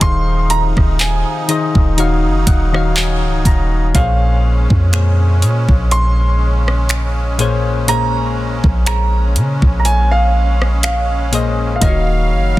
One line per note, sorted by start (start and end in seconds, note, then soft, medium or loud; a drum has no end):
0.00 0.74 D#1 loud
0.00 1.94 C3 medium
0.00 1.09 D#3 medium
0.00 1.96 F3 medium
0.00 3.90 D#4 medium
0.00 1.09 D#4 medium
0.00 1.10 G#4 medium
0.00 1.10 C5 medium
0.00 1.10 F5 medium
0.00 0.52 C6 loud
0.00 kick loud
0.00 closed hi-hat medium
0.50 0.61 A#5 loud
0.50 closed hi-hat medium
0.77 1.24 D#1 medium
0.77 kick medium
0.77 cross-stick medium
0.99 3.42 G#5 medium
0.99 clap loud
0.99 closed hi-hat medium
1.48 1.96 D#3 medium
1.48 1.97 D#4 medium
1.48 1.98 G#4 medium
1.48 1.99 C5 medium
1.48 1.99 D#5 medium
1.48 closed hi-hat medium
1.75 2.26 D#1 loud
1.75 kick medium
1.97 3.93 C#3 medium
1.97 2.57 D#3 medium
1.97 3.93 F#3 medium
1.97 2.58 D#4 medium
1.97 2.58 F#4 medium
1.97 2.58 C#5 medium
1.97 2.59 F5 medium
1.97 closed hi-hat medium
2.25 2.46 F1 loud
2.47 3.24 D#1 loud
2.47 2.93 F#5 medium
2.47 kick loud
2.47 closed hi-hat medium
2.73 3.62 D#3 medium
2.73 3.62 D#4 medium
2.73 3.63 F#4 medium
2.73 3.63 C#5 medium
2.73 3.63 F5 loud
2.73 cross-stick loud
2.96 3.42 G#5 medium
2.96 clap loud
2.96 closed hi-hat medium
3.23 3.44 C#1 loud
3.45 3.93 D#1 loud
3.45 3.92 A#5 medium
3.45 kick loud
3.45 closed hi-hat medium
3.94 4.67 A#1 loud
3.94 4.68 A#2 medium
3.94 11.77 C#3 medium
3.94 11.77 G#3 medium
3.94 4.68 A#3 medium
3.94 11.77 C#4 medium
3.94 4.68 G#4 medium
3.94 4.69 C5 medium
3.94 4.69 C#5 medium
3.94 5.98 F5 loud
3.94 kick loud
3.94 closed hi-hat medium
4.70 5.44 F2 loud
4.70 kick medium
4.92 6.36 A#2 medium
4.92 6.36 A#3 medium
4.92 6.37 G#4 medium
4.92 6.37 C5 medium
4.92 6.38 C#5 medium
4.92 finger snap loud
4.92 closed hi-hat medium
5.42 5.68 A#2 loud
5.42 closed hi-hat medium
5.69 8.60 A#1 loud
5.69 kick medium
5.91 7.94 C6 loud
5.91 closed hi-hat medium
6.68 cross-stick medium
6.89 finger snap loud
6.89 closed hi-hat medium
7.38 7.75 A#2 medium
7.38 7.76 A#3 medium
7.38 7.76 G#4 medium
7.38 7.77 C5 medium
7.38 7.77 C#5 loud
7.38 closed hi-hat medium
7.87 8.61 A#2 medium
7.87 8.61 A#3 medium
7.87 8.62 G#4 medium
7.87 8.62 C5 medium
7.87 8.63 C#5 medium
7.87 8.83 A#5 loud
7.87 closed hi-hat medium
8.64 9.38 A#1 loud
8.64 kick medium
8.86 10.29 A#2 medium
8.86 10.30 A#3 medium
8.86 10.30 G#4 medium
8.86 10.31 C5 medium
8.86 10.31 C#5 medium
8.86 9.75 A#5 loud
8.86 finger snap loud
8.86 closed hi-hat medium
9.36 9.61 C#3 loud
9.36 closed hi-hat medium
9.62 11.78 A#1 loud
9.62 kick medium
9.80 9.85 A#5 medium
9.85 10.10 G#5 loud
9.85 closed hi-hat medium
10.11 10.82 F5 medium
10.62 cross-stick medium
10.83 11.55 F5 medium
10.83 finger snap loud
10.83 closed hi-hat medium
11.32 11.69 A#2 medium
11.32 11.69 A#3 medium
11.32 11.70 G#4 medium
11.32 11.70 C5 medium
11.32 11.70 D#5 medium
11.32 closed hi-hat medium
11.76 11.82 F5 medium
11.81 12.33 D#1 loud
11.81 12.59 C#3 medium
11.81 12.54 D#3 medium
11.81 12.59 F#3 medium
11.81 12.55 A#3 medium
11.81 11.89 F4 medium
11.81 12.56 C#5 medium
11.81 12.59 D#5 medium
11.81 12.59 F5 medium
11.81 12.56 F5 medium
11.81 kick loud
11.81 closed hi-hat medium
11.89 12.58 F#4 medium
12.31 12.56 F#1 medium